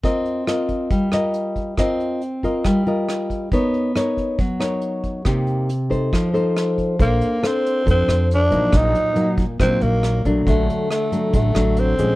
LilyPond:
<<
  \new Staff \with { instrumentName = "Nylon-string guitar" } { \time 4/4 \key c \dorian \tempo 4 = 138 << { <f' bes' ees''>4 <f' bes' ees''>4. <f' bes' ees''>4. | <f' bes' ees''>4 r8 <f' bes' ees''>4 <f' bes' ees''>4. | <dis' ais' cis''>4 <dis' ais' cis''>4 r8 <dis' ais' cis''>4. | <bes ees' g'>4 r8 <ees' a' c''>4 <ees' a' c''>4. |
<d' a' c''>4 <d' a' c''>4 <d' a' c''>4. <ges bes ees'>8~ | <ges bes ees'>4 <ges bes ees'>8 r8 <ges bes ees'>4. <ges a d'>8~ | <ges a d'>4 r8 <fis a d'>4 <fis a d'>4 <f aes des'>8 | } \\ { c'2 g2 | c'2 g2 | b2 fis2 | c2 f2 |
bes2 f2 | bes,2 bes,2 | d2 d2 | } >> }
  \new Staff \with { instrumentName = "Tenor saxophone" } { \time 4/4 \key c \dorian r1 | r1 | r1 | r1 |
bes4 c'4 c'4 d'4 | ees'4. r8 c'8 bes4 r8 | a4 a4 a4 c'4 | }
  \new Staff \with { instrumentName = "Upright bass" } { \clef bass \time 4/4 \key c \dorian r1 | r1 | r1 | r1 |
bes,,8 r4. f,8 f,4 bes,,8 | bes,,8 r4. bes,,8 bes,,4 bes,,8 | bes,,8 r4. a,,8 a,,4 bes,,8 | }
  \new DrumStaff \with { instrumentName = "Drums" } \drummode { \time 4/4 <hh bd>8 hh8 <hh ss>8 <hh bd>8 <hh bd>8 <hh ss>8 hh8 <hh bd>8 | <hh bd ss>8 hh8 hh8 <hh bd>8 <hh bd ss>8 hh8 <hh ss>8 <hh bd>8 | <hh bd>8 hh8 <hh ss>8 <hh bd>8 <hh bd>8 <hh ss>8 hh8 <hh bd>8 | <hh bd ss>8 hh8 hh8 <hh bd>8 <hh bd ss>8 hh8 <hh ss>8 <hh bd>8 |
<hh bd>8 hh8 <hh ss>8 hh8 <hh bd>8 <hh ss>8 hh8 hh8 | <hh bd ss>8 hh8 hh8 <hh bd>8 <hh bd ss>8 hh8 <hh ss>8 hh8 | <hh bd>8 hh8 <hh ss>8 hh8 <hh bd>8 <hh ss>8 hh8 hh8 | }
>>